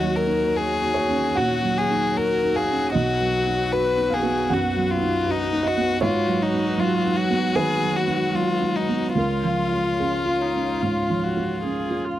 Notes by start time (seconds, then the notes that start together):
Already playing: D#2 F#3 A#3 F#4 C#5 D#5
0.01 F#3
0.16 A#4
0.27 D#4
0.54 F#4 G#4
0.82 D#4
0.94 C#5
1.09 C#4
1.35 A#2 F#4 F#5
1.63 F#3
1.78 G#4
1.91 D#4
2.16 F#4 A#4
2.44 D#4
2.55 G#4 F5
2.70 C#4
2.92 B1 B3 F#4 B4 D#5
3.21 F#3
3.47 D#4
3.72 F#4 B4
3.98 D#4
4.10 G#4 F5
4.23 B3
4.50 F#2 F#4 F#5
4.76 F#3
4.90 F4
5.01 D#4
5.27 D#4 F#4
5.53 D#4
5.63 F#4 D#5
5.77 B3
6.01 G#2 F#3 G#3 F4 F#4 C#5
6.27 F#3
6.42 D#4
6.53 D#4
6.78 F#3 F4
7.04 D#4
7.16 F#4
7.30 B3
7.55 D#3 G#4 B4
7.81 F#3
7.96 F#4
8.08 D#4
8.33 F#3 F4
8.61 D#4
8.76 D#4
8.89 B3
9.15 C#2 F4 A#4 C#5 F5
9.43 F3
9.72 F4
10.00 C#4 F4 G#4
10.26 F4
10.42 D#4
10.55 C#4
10.82 G#2 F4
11.10 F3
11.24 F#4
11.37 F4
11.63 C#4 G#4
11.91 F4
12.05 F4